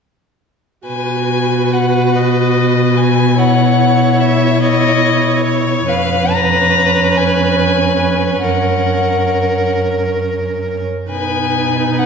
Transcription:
0.87 5.84 B2 soft
0.87 3.34 F#4 soft
0.87 3.34 B4 soft
0.87 1.75 G#5 medium
1.73 2.16 F#5 soft
2.15 2.99 D#5 soft
2.97 3.40 G#5 medium
3.38 5.84 E4 soft
3.38 5.84 C#5 soft
3.38 4.22 F#5 soft
4.20 4.62 E5 medium
4.60 5.42 D#5 medium
5.43 5.90 C#5 medium
5.87 8.40 F2 medium
5.87 10.85 C#4 medium
5.87 8.41 B4 medium
5.87 6.34 F5 medium
6.32 7.19 A#5 medium
7.17 8.42 G#5 medium
8.43 10.85 F#2 soft
8.43 10.85 A#4 soft
8.43 9.73 F#5 soft
11.10 12.06 B2 soft
11.10 12.06 D#4 soft
11.10 12.06 B4 soft
11.10 12.00 G#5 medium
11.98 12.06 F#5 soft

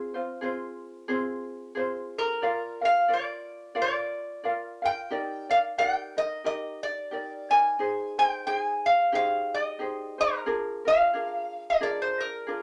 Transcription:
0.00 0.14 C4 medium
0.00 0.14 F4 medium
0.00 0.14 G#4 medium
0.00 0.13 C5 medium
0.14 0.41 C4 soft
0.14 0.41 F4 soft
0.14 0.42 C5 medium
0.41 1.08 C4 medium
0.41 1.09 F4 medium
0.41 1.07 G#4 medium
0.41 1.08 C5 medium
1.08 1.74 C4 medium
1.08 1.76 F4 medium
1.08 1.74 G#4 medium
1.08 1.76 C5 medium
1.75 2.42 C4 medium
1.75 2.43 F4 medium
1.75 2.42 G#4 medium
1.75 2.43 C5 medium
2.18 2.85 A#4 medium
2.42 2.82 F4 medium
2.42 2.81 A#4 medium
2.42 2.81 D5 medium
2.42 2.80 F5 medium
2.81 3.08 F4 soft
2.81 3.08 A#4 soft
2.81 3.09 F5 soft
2.81 3.12 F5 medium
3.08 3.74 F4 medium
3.08 3.76 A#4 medium
3.08 3.74 D5 medium
3.08 3.75 F5 medium
3.13 3.80 D5 medium
3.75 4.43 F4 medium
3.75 4.45 A#4 medium
3.75 4.43 D5 medium
3.75 4.43 F5 medium
3.82 4.88 D5 medium
4.44 4.83 F4 medium
4.44 4.82 A#4 medium
4.44 4.82 D5 medium
4.44 4.81 F5 medium
4.82 5.11 F4 soft
4.82 5.10 A#4 soft
4.82 5.10 F5 soft
4.82 5.50 G5 medium
5.11 5.50 D#4 medium
5.11 5.49 G4 medium
5.11 5.49 A#4 medium
5.11 5.48 D5 medium
5.49 5.77 D#4 soft
5.49 5.78 A#4 soft
5.49 5.77 D5 soft
5.49 5.58 F5 medium
5.78 6.16 D#4 medium
5.78 6.16 G4 medium
5.78 6.15 A#4 medium
5.78 6.17 D5 medium
5.78 6.18 G5 medium
6.17 6.44 D#4 soft
6.17 6.44 A#4 soft
6.17 6.45 D#5 medium
6.44 7.12 D#4 medium
6.44 7.11 G4 medium
6.44 7.11 A#4 medium
6.44 6.83 D#5 medium
6.83 7.52 D5 medium
7.11 7.50 D#4 medium
7.11 7.50 G4 soft
7.11 7.50 A#4 medium
7.11 7.49 D5 medium
7.50 7.78 D#4 soft
7.50 7.78 A#4 soft
7.50 7.78 D5 soft
7.50 8.18 G#5 medium
7.79 8.17 D#4 medium
7.79 8.18 G#4 medium
7.79 8.17 C5 medium
8.18 8.46 D#4 soft
8.18 8.46 G#4 soft
8.18 8.46 C5 soft
8.18 8.46 G5 loud
8.47 9.12 D#4 medium
8.47 9.13 G#4 medium
8.47 9.13 C5 medium
8.47 8.86 G#5 medium
8.86 9.14 F5 medium
9.12 9.78 D#4 medium
9.12 9.78 G4 medium
9.12 9.79 G#4 medium
9.12 9.80 C5 medium
9.12 9.53 F5 medium
9.54 10.21 D#5 medium
9.79 10.18 D#4 medium
9.79 10.18 G4 medium
9.79 10.18 G#4 medium
9.79 10.17 C5 medium
10.18 10.46 D#4 soft
10.18 10.45 G#4 soft
10.18 10.88 A#4 medium
10.18 10.46 C5 soft
10.46 10.85 D4 medium
10.46 10.85 F4 medium
10.46 10.85 G#4 medium
10.46 10.84 A#4 medium
10.85 11.13 D4 soft
10.85 11.14 F4 soft
10.85 11.13 A#4 soft
10.85 11.63 F5 loud
11.13 11.79 D4 medium
11.13 11.81 F4 medium
11.13 11.80 G#4 medium
11.13 11.81 A#4 medium
11.70 11.82 D#5 medium
11.81 12.47 D4 medium
11.81 12.48 F4 medium
11.81 12.45 G#4 medium
11.81 12.48 A#4 medium
11.81 12.01 D5 medium
12.02 12.20 C5 medium
12.20 12.62 A#4 medium
12.47 12.62 D4 medium
12.47 12.62 F4 medium
12.47 12.62 G#4 medium
12.47 12.62 A#4 medium

